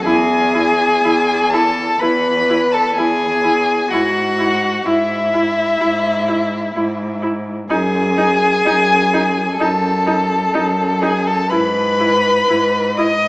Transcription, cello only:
0.05 E2
1.03 E2
2.01 E2
2.96 E2
3.90 G#2
4.84 G#2
5.80 G#2
6.75 G#2
7.69 F#2
8.65 F#2
9.59 F#2
10.54 F#2
11.51 G#2
12.47 G#2

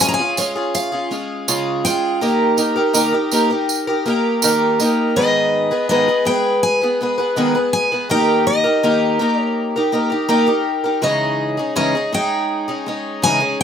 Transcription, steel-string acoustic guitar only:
0.01 G#5
0.08 A#5
0.14 G#5
0.38 C#5
0.75 F5
1.85 G5
5.16 D#5
5.89 D#5
6.26 G5
6.63 G#5
7.73 G#5
8.11 G5
8.47 D#5
9.42 C#5
11.04 D#5
11.76 D#5
12.14 G5
13.23 G#5

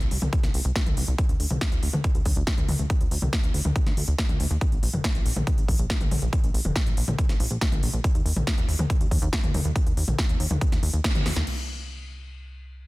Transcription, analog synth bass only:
0.01 C2
0.11 C2
0.22 C2
0.44 C2
0.54 C2
0.65 C2
0.86 C2
0.97 C2
1.08 C2
1.29 D2
1.40 D2
1.51 C2
1.72 D2
1.83 D2
1.94 D2
2.15 D2
2.26 D2
2.36 D2
2.58 D2
2.69 D2
2.79 D2
3.01 D2
3.11 D2
3.22 C2
3.43 D2
3.54 D2
3.65 D2
3.86 D2
3.97 D2
4.08 D2
4.29 D2
4.40 D2
4.51 D#2
4.72 A#1
4.83 A#1
4.93 F1
5.15 A#1
5.26 A#1
5.36 A#1
5.58 A#1
5.68 A#1
5.79 A#1
6.01 A#1
6.11 A#1
6.22 A#1
6.43 A#1
6.54 A#1
6.65 F1
6.86 A#1
6.97 A#1
7.08 A#1
7.29 A#1
7.40 A#1
7.51 A#1
7.72 A#1
7.83 A#1
7.93 A#1
8.15 D#2
8.26 D#2
8.36 A#1
8.58 D#2
8.68 D#2
8.79 D#2
9.01 D#2
9.11 D#2
9.22 D#2
9.43 D#2
9.54 D#2
9.65 D#2
9.86 D#2
9.97 D#2
10.08 A#1
10.29 D#2
10.40 D#2
10.51 D#2
10.72 D#2
10.83 D#2
10.93 D#2
11.15 D#2
11.26 D#2
11.36 D#2
11.47 C2

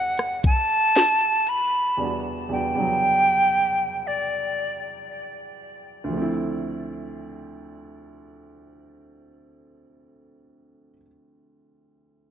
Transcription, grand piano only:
Already playing: E2 G3 B3 D4 E4 F#4
1.97 E2 G3 B3 D4
2.02 F#4
2.49 E2 G3 B3 D4
2.53 F#4
2.75 E2 G3 B3 D4
2.80 F#3
6.04 D2
6.09 F3
6.13 A3
6.17 C4
6.22 E4

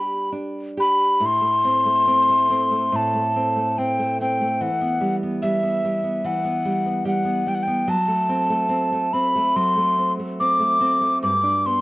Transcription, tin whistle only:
Already playing: B5
0.80 B5
1.26 C6
2.96 A5
3.78 G5
4.21 G5
4.61 F#5
5.42 E5
6.26 F#5
7.07 F#5
7.48 G5
7.55 F#5
7.63 G5
7.89 A5
9.13 B5
9.56 C6
10.40 D6
11.23 D6
11.66 C6

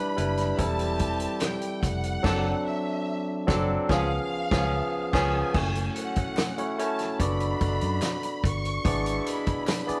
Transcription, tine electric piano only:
Already playing: G3 D4 E4 B4
0.16 G3 D4 E4 B4
0.58 G3 C4 E4 A4
2.23 F#3 C4 D4 A4
3.47 F#3 C4 D4 A4
3.88 F3 B3 C#4 G#4
4.51 F3 B3 C#4 G#4
5.13 F3 B3 C#4 G#4
5.54 A3 C#4 E4 F#4 C#5
6.58 A3 C#4 E4 F#4 C#5
6.79 A3 C#4 E4 F#4 C#5
7.19 B3 D4 F#4 A4 D5
8.85 B3 D4 E4 G#4 D5
9.87 B3 D4 E4 G#4 D5

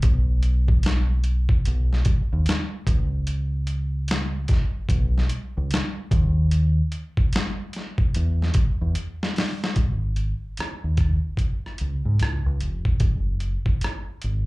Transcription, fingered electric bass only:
0.04 B1
1.67 B1
2.33 D#2
2.88 C#2
4.90 B1
5.57 C#2
6.12 D#2
8.16 E2
8.81 E2
9.77 G#1
10.59 muted fingered electric bass stroke
10.84 D#2
11.81 C#2
12.05 G#2
12.21 C#2
12.46 C#2
12.61 F1
13.01 F#1
14.24 G#1

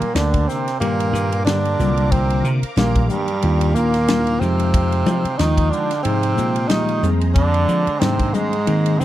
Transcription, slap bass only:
0.01 muted slap bass stroke
0.15 D2
0.81 G2
1.13 G2
1.80 C2
2.44 C3
2.63 muted slap bass stroke
2.77 A#1
3.43 D#2
3.76 D#2
4.41 F2
5.07 F3
5.24 muted slap bass stroke
5.39 D#2
6.05 G#2
6.38 A#2
7.03 F2
7.69 F3
7.87 muted slap bass stroke
8.02 G#2
8.67 D#3
9.00 D3

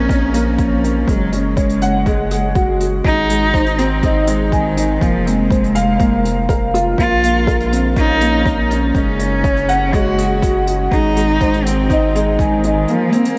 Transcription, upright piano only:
Already playing: A#3 C4 A#4
0.09 C#4
0.34 A#3
0.59 C#5
0.83 C#4
1.08 G#3
1.33 C#4
1.57 C#5
1.82 F#5
2.07 G#3
2.31 G#4
2.56 F#4
2.80 F#4
3.05 G#3
3.29 G#3
3.54 C5
3.78 C4
4.03 D#4
4.28 G#3
4.52 G#5
4.77 D#4
5.01 A#3
5.26 C4
5.50 C5
5.75 F5
6.00 A#3
6.25 A#3
6.49 A#4
6.74 F4
6.99 A#3
7.23 A#3
7.47 A#4
7.72 C4
7.96 C#4
8.21 A#3
8.46 C#5
8.70 C#4
8.95 G#3
9.19 C#4
9.44 C#5
9.69 F#5
9.94 G#3
10.18 G#4
10.43 F#4
10.67 F#4
10.92 G#3
11.17 G#3
11.41 C5
11.66 C4
11.90 D#4
12.15 G#3
12.40 G#5
12.64 D#4
12.89 A#3
13.14 C4

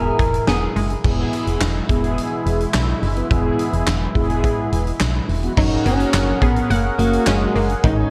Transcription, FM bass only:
Already playing: E1
0.19 E1
0.48 E1
0.76 F#1
1.04 E1
1.47 E1
1.61 E1
1.89 E1
2.46 E1
2.74 B1
3.03 F#1
3.31 E1
3.73 E1
3.87 E1
4.16 E1
4.72 E1
5.01 B1
5.29 E1
5.57 F#1
5.85 F#1
6.14 F#1
6.42 A#1
6.70 F#1
6.99 F#1
7.27 F#1
7.55 F#1
7.84 G#1

